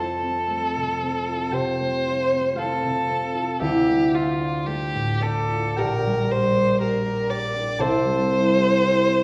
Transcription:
0.00 3.28 F2 medium
0.00 0.49 A3 soft
0.00 1.27 F4 medium
0.00 1.56 A4 medium
0.00 3.27 A4 medium
0.00 2.11 C5 soft
0.00 2.55 F5 medium
0.00 3.27 A5 medium
0.22 1.01 C4 soft
0.50 1.79 A3 soft
0.76 1.51 C3 soft
1.02 2.31 C4 soft
1.28 2.06 F4 soft
1.52 2.82 C3 soft
1.52 3.65 G4 medium
1.52 2.60 C5 medium
1.52 3.29 G5 medium
1.80 2.55 A3 soft
2.07 2.56 F4 soft
2.32 3.08 C4 soft
2.56 3.88 A3 soft
2.56 3.33 F4 medium
2.56 3.61 A4 medium
2.56 3.66 C5 medium
2.56 5.82 F5 medium
2.84 3.66 C3 soft
3.10 3.66 C4 soft
3.34 4.13 F4 medium
3.60 5.82 D2 medium
3.60 5.82 E4 medium
3.60 4.16 G4 medium
3.60 6.34 E5 loud
3.89 4.66 A3 soft
4.14 5.50 F4 medium
4.14 4.68 F4 medium
4.41 5.21 D4 soft
4.66 5.83 A3 medium
4.66 5.25 G4 medium
4.95 5.83 A2 soft
5.21 6.54 D4 medium
5.21 5.80 A4 medium
5.21 5.77 D5 medium
5.51 5.83 F4 medium
5.76 7.84 A#1 medium
5.76 6.29 G4 medium
5.76 6.33 A#4 medium
5.76 7.84 D5 medium
5.76 9.23 G5 loud
6.06 8.04 G3 soft
6.31 6.79 G4 medium
6.31 6.80 C5 medium
6.55 7.05 D4 medium
6.80 7.29 G4 medium
6.80 7.32 A#4 medium
7.06 7.54 D4 medium
7.30 8.55 G4 medium
7.30 7.82 D5 medium
7.55 7.84 D4 medium
7.79 9.23 C2 medium
7.79 9.23 A4 medium
7.79 9.23 C5 medium
7.79 9.23 E5 medium
7.79 9.23 A5 loud
8.05 9.23 G3 soft
8.31 8.81 E4 medium
8.57 9.23 G4 soft
8.82 9.23 E4 medium
9.07 9.23 C4 soft

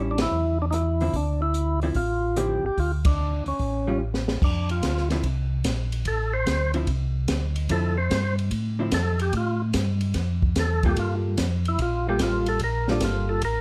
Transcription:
0.00 0.28 A1 medium
0.00 0.16 G3 medium
0.00 0.16 C#4 medium
0.00 0.17 E4 medium
0.11 0.20 D4 medium
0.18 0.58 E4 loud
0.18 snare medium
0.18 ride medium
0.31 1.10 E2 medium
0.62 0.65 D4 medium
0.71 0.74 D#4 medium
0.71 1.16 E4 medium
0.71 cross-stick medium
0.71 closed hi-hat soft
1.00 1.13 D3 medium
1.00 1.13 F3 medium
1.00 1.13 C4 medium
1.00 1.14 E4 medium
1.00 open hi-hat soft
1.13 1.92 D2 medium
1.13 1.41 D4 medium
1.13 kick soft
1.13 open hi-hat soft
1.42 1.80 E4 medium
1.54 closed hi-hat medium
1.82 1.95 D3 medium
1.82 1.95 F3 medium
1.82 1.95 C4 medium
1.82 1.95 E4 medium
1.82 open hi-hat soft
1.94 2.60 A1 medium
1.94 2.39 F4 medium
1.94 kick soft
1.94 open hi-hat soft
2.36 2.62 D3 medium
2.36 2.62 F3 medium
2.36 2.62 C4 medium
2.36 2.62 E4 medium
2.36 2.65 G4 loud
2.36 cross-stick medium
2.36 closed hi-hat medium
2.63 2.71 A1 soft
2.63 2.79 G4 medium
2.77 3.42 D2 medium
2.77 2.92 F4 loud
2.77 kick soft
2.77 open hi-hat soft
3.05 3.44 D4 medium
3.05 kick medium
3.05 ride medium
3.46 3.53 D2 soft
3.46 3.98 C#4 medium
3.46 open hi-hat soft
3.59 4.38 A1 medium
3.59 kick soft
3.59 open hi-hat soft
3.87 4.00 G3 medium
3.87 4.00 C#4 medium
3.87 4.00 F4 medium
4.14 snare medium
4.28 snare medium
4.42 4.82 F2 medium
4.42 4.70 D4 medium
4.42 kick medium
4.42 crash medium
4.69 5.09 F4 medium
4.69 ride soft
4.82 5.23 D2 medium
4.82 kick soft
4.82 snare medium
4.82 hi-hat pedal medium
4.82 ride medium
4.97 snare soft
5.10 5.23 D3 medium
5.10 5.23 F3 medium
5.10 5.24 C4 medium
5.10 5.24 E4 medium
5.10 snare soft
5.10 ride soft
5.23 5.64 C2 medium
5.23 kick soft
5.23 ride soft
5.64 6.04 A#1 medium
5.64 kick soft
5.64 snare medium
5.64 hi-hat pedal medium
5.64 ride medium
5.92 ride soft
6.05 6.46 A1 medium
6.05 6.34 A4 medium
6.05 kick soft
6.05 ride medium
6.34 6.72 C5 medium
6.46 6.87 D2 medium
6.46 kick soft
6.46 snare medium
6.46 hi-hat pedal medium
6.46 ride medium
6.74 6.87 D3 medium
6.74 6.87 F3 medium
6.74 6.87 C4 medium
6.74 6.87 E4 medium
6.74 ride soft
6.87 7.27 C2 medium
6.87 kick soft
6.87 ride soft
7.28 7.68 D2 medium
7.28 kick soft
7.28 snare medium
7.28 hi-hat pedal medium
7.28 ride medium
7.56 ride soft
7.69 8.10 F2 medium
7.69 7.95 D3 medium
7.69 7.95 F3 medium
7.69 7.95 C4 medium
7.69 7.96 E4 medium
7.69 7.97 A4 medium
7.69 kick soft
7.69 ride medium
7.98 8.36 C5 medium
8.10 8.50 G2 medium
8.10 kick soft
8.10 snare medium
8.10 hi-hat pedal medium
8.10 ride medium
8.38 ride soft
8.51 8.92 A2 medium
8.51 kick soft
8.51 ride medium
8.79 8.91 D3 medium
8.79 8.92 F3 medium
8.79 8.92 C4 medium
8.79 8.92 E4 medium
8.91 9.32 F2 medium
8.91 9.20 A4 medium
8.91 kick soft
8.91 snare medium
8.91 hi-hat pedal medium
8.91 ride medium
9.19 9.34 G4 medium
9.19 ride soft
9.33 9.73 A2 medium
9.33 kick soft
9.33 ride medium
9.37 9.62 F4 medium
9.73 10.14 G2 loud
9.73 kick soft
9.73 snare medium
9.73 hi-hat pedal medium
9.73 ride medium
10.01 ride soft
10.14 10.55 F2 medium
10.14 kick soft
10.14 snare soft
10.14 ride medium
10.42 kick medium
10.56 10.96 E2 medium
10.56 10.85 A4 medium
10.56 kick soft
10.56 snare medium
10.56 hi-hat pedal medium
10.56 ride medium
10.83 11.36 G3 medium
10.83 11.37 A#3 medium
10.83 11.37 F4 medium
10.83 10.98 G4 medium
10.83 11.37 A4 medium
10.83 kick medium
10.83 ride soft
10.96 11.37 G2 medium
10.96 11.15 F4 medium
10.96 kick soft
10.96 ride medium
11.37 11.78 F2 medium
11.37 kick soft
11.37 snare medium
11.37 hi-hat pedal medium
11.37 ride medium
11.65 11.80 E4 medium
11.65 ride soft
11.79 12.19 A#1 medium
11.79 12.07 F4 medium
11.79 kick soft
11.79 ride medium
12.09 12.59 G3 medium
12.09 12.60 A#3 medium
12.09 12.60 F4 medium
12.09 12.21 G4 loud
12.09 12.60 A4 medium
12.19 12.60 A1 medium
12.19 kick soft
12.19 snare medium
12.19 hi-hat pedal medium
12.19 ride medium
12.23 12.48 F4 medium
12.46 12.61 A4 medium
12.46 ride soft
12.59 13.00 A#1 medium
12.59 kick soft
12.59 ride medium
12.64 12.89 A#4 medium
12.88 13.41 G3 medium
12.88 13.41 A#3 medium
12.88 13.03 D4 medium
12.88 13.41 F4 medium
12.88 13.41 A4 medium
12.88 snare soft
13.00 13.41 G1 loud
13.00 kick soft
13.00 snare medium
13.00 hi-hat pedal medium
13.00 ride medium
13.05 13.30 F4 medium
13.29 13.42 A4 medium
13.41 13.61 A1 medium
13.41 13.61 A#4 medium
13.41 kick soft
13.41 ride medium

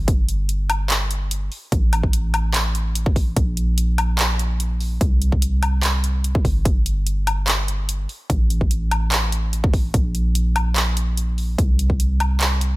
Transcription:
0.00 1.50 G1 medium
0.08 kick loud
0.08 closed hi-hat medium
0.29 closed hi-hat medium
0.49 closed hi-hat medium
0.70 closed hi-hat medium
0.70 high woodblock medium
0.90 clap loud
0.90 closed hi-hat medium
1.11 closed hi-hat medium
1.31 closed hi-hat medium
1.52 open hi-hat medium
1.72 3.35 A1 medium
1.72 kick loud
1.72 closed hi-hat medium
1.93 closed hi-hat medium
1.93 high woodblock medium
2.03 kick medium
2.13 closed hi-hat medium
2.34 closed hi-hat medium
2.34 high woodblock medium
2.54 clap loud
2.54 closed hi-hat medium
2.75 closed hi-hat medium
2.95 closed hi-hat medium
3.06 kick loud
3.16 kick medium
3.16 open hi-hat medium
3.37 4.99 A#1 medium
3.37 kick loud
3.37 closed hi-hat medium
3.57 closed hi-hat medium
3.78 closed hi-hat medium
3.98 closed hi-hat medium
3.98 high woodblock medium
4.19 clap loud
4.19 closed hi-hat medium
4.39 closed hi-hat medium
4.60 closed hi-hat medium
4.80 open hi-hat medium
5.01 6.43 C2 medium
5.01 kick loud
5.01 closed hi-hat medium
5.22 closed hi-hat medium
5.32 kick medium
5.42 closed hi-hat medium
5.63 closed hi-hat medium
5.63 high woodblock medium
5.83 clap loud
5.83 closed hi-hat medium
6.04 closed hi-hat medium
6.24 closed hi-hat medium
6.35 kick loud
6.45 8.07 G1 medium
6.45 kick medium
6.45 open hi-hat medium
6.65 kick loud
6.65 closed hi-hat medium
6.86 closed hi-hat medium
7.07 closed hi-hat medium
7.27 closed hi-hat medium
7.27 high woodblock medium
7.48 clap loud
7.48 closed hi-hat medium
7.68 closed hi-hat medium
7.89 closed hi-hat medium
8.09 open hi-hat medium
8.30 9.92 A1 medium
8.30 kick loud
8.30 closed hi-hat medium
8.50 closed hi-hat medium
8.61 kick medium
8.71 closed hi-hat medium
8.91 closed hi-hat medium
8.91 high woodblock medium
9.12 clap loud
9.12 closed hi-hat medium
9.32 closed hi-hat medium
9.53 closed hi-hat medium
9.64 kick loud
9.74 kick medium
9.74 open hi-hat medium
9.94 11.57 A#1 medium
9.94 kick loud
9.94 closed hi-hat medium
10.15 closed hi-hat medium
10.35 closed hi-hat medium
10.56 closed hi-hat medium
10.56 high woodblock medium
10.76 clap loud
10.76 closed hi-hat medium
10.97 closed hi-hat medium
11.17 closed hi-hat medium
11.38 open hi-hat medium
11.58 12.76 C2 medium
11.58 kick loud
11.58 closed hi-hat medium
11.79 closed hi-hat medium
11.90 kick medium
12.00 closed hi-hat medium
12.20 closed hi-hat medium
12.20 high woodblock medium
12.41 clap loud
12.41 closed hi-hat medium
12.61 closed hi-hat medium

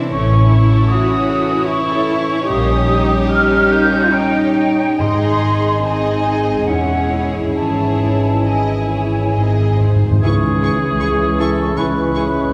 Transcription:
0.00 0.14 C3 medium
0.00 2.45 E3 medium
0.00 0.12 C4 soft
0.00 0.14 C4 soft
0.00 0.11 D4 medium
0.00 0.89 E4 soft
0.00 2.44 E4 medium
0.00 1.28 A4 soft
0.00 0.14 C5 soft
0.10 0.76 A1 medium
0.10 2.52 A2 medium
0.10 0.30 A3 medium
0.10 0.49 C#4 medium
0.10 4.83 C#4 medium
0.10 4.97 C#5 medium
0.10 0.85 C#6 medium
0.32 0.51 C#4 medium
0.49 2.52 A3 soft
0.49 0.88 E4 medium
0.49 0.70 E4 medium
0.72 0.90 A4 medium
0.88 1.67 E4 medium
0.88 1.09 E4 medium
0.88 1.68 F#4 medium
0.88 1.68 D#6 medium
1.09 1.28 C#4 medium
1.29 1.49 A3 medium
1.29 2.52 A4 soft
1.51 1.69 C#4 medium
1.67 2.48 E4 medium
1.67 2.52 E4 medium
1.67 2.46 C#6 medium
1.72 1.90 E4 medium
1.90 2.09 A4 medium
2.08 4.54 C#4 medium
2.08 2.30 E4 medium
2.32 2.50 C#4 medium
2.48 3.16 A#1 medium
2.48 5.04 A#2 medium
2.48 4.83 G3 medium
2.48 2.68 A#3 medium
2.48 4.99 D#4 medium
2.48 4.08 G4 medium
2.48 3.29 D#6 medium
2.71 2.90 C#4 medium
2.89 5.04 G3 medium
2.89 3.10 D#4 medium
3.10 3.29 G4 soft
3.29 4.10 D#4 soft
3.29 3.50 D#4 medium
3.29 3.69 F6 medium
3.52 3.71 C#4 medium
3.70 3.91 A#3 medium
3.70 5.04 G4 soft
3.70 4.11 G6 medium
3.92 4.12 C#4 medium
4.11 4.98 D#4 medium
4.11 5.83 D#4 medium
4.11 4.33 D#4 medium
4.11 5.00 G5 medium
4.34 4.56 G4 medium
4.55 5.04 C#4 soft
4.55 4.79 D#4 medium
4.78 5.00 C#4 soft
4.99 6.65 G#1 medium
4.99 6.22 G#2 medium
4.99 6.72 G#2 medium
4.99 7.52 G#3 medium
4.99 5.82 D#4 medium
4.99 6.65 D#4 medium
4.99 5.80 D#4 medium
4.99 5.81 G#4 medium
4.99 5.80 D#5 medium
4.99 5.84 C6 medium
5.42 8.01 G#3 soft
5.84 6.68 C4 medium
5.84 6.67 D#4 medium
5.84 6.72 D#4 soft
5.84 6.68 G#4 medium
5.84 6.67 D#5 medium
5.84 6.68 G#5 medium
6.26 8.91 G#4 soft
6.68 7.56 E1 medium
6.68 7.60 E2 medium
6.68 7.56 C#4 medium
6.68 9.37 C#4 medium
6.68 7.55 E4 soft
6.68 7.55 G#4 soft
6.68 7.54 C#5 soft
6.68 7.27 F#5 medium
7.12 9.41 C#4 soft
7.12 8.46 E4 soft
7.55 9.99 G#1 medium
7.55 9.35 G#2 soft
7.55 9.37 E3 soft
7.55 9.77 E4 soft
7.55 8.45 E4 soft
7.55 8.45 G#4 soft
7.55 8.45 C#5 soft
7.55 8.45 A5 medium
8.02 11.92 G#3 soft
8.46 9.35 E4 soft
8.46 9.40 E4 soft
8.46 9.35 G#4 soft
8.46 8.89 D#5 soft
8.46 9.81 G#5 soft
8.92 10.80 G#4 soft
8.92 9.38 C#5 soft
9.36 10.26 G#2 soft
9.36 9.89 D#3 soft
9.36 9.89 C4 soft
9.36 10.04 D#4 soft
9.36 10.02 G#4 soft
9.36 9.82 D#5 soft
9.61 9.69 G#2 soft
9.70 9.77 G#2 soft
9.79 9.85 G#2 soft
9.79 10.27 C4 soft
9.79 10.27 D#4 soft
9.79 10.24 C5 soft
9.94 10.01 G#2 soft
10.02 10.09 G#2 medium
10.11 10.18 G#2 medium
10.21 10.91 C#2 medium
10.21 10.92 C#2 medium
10.21 12.53 C#3 medium
10.21 12.49 E3 medium
10.21 12.53 E3 medium
10.21 12.53 C#4 medium
10.21 10.31 E4 soft
10.21 11.41 G#4 medium
10.21 12.53 G#4 medium
10.21 10.31 G#4 medium
10.21 12.53 C#6 soft
10.21 10.33 C#6 soft
10.42 12.14 C#4 soft
10.62 10.70 E4 soft
10.62 11.96 E4 soft
10.62 10.70 G#4 soft
10.62 10.73 C#6 soft
10.82 12.53 G#4 soft
11.00 11.68 C#2 medium
11.00 11.69 C#2 medium
11.00 11.08 E4 soft
11.00 11.10 G#4 soft
11.00 11.76 C#5 soft
11.00 11.09 C#6 soft
11.20 11.57 E5 soft
11.38 11.46 E4 soft
11.38 11.48 G#4 soft
11.38 11.79 A4 medium
11.38 12.53 G#5 soft
11.38 11.48 C#6 soft
11.58 12.53 E5 soft
11.77 12.44 C#2 medium
11.77 12.45 C#2 medium
11.77 11.86 E4 soft
11.77 11.86 G#4 soft
11.77 12.53 B4 medium
11.77 12.53 C#5 soft
11.77 11.86 C#6 soft
11.97 12.53 E4 soft
12.15 12.53 C#4 soft
12.15 12.24 E4 soft
12.15 12.25 G#4 soft
12.15 12.23 C#6 soft
12.35 12.53 G#3 soft

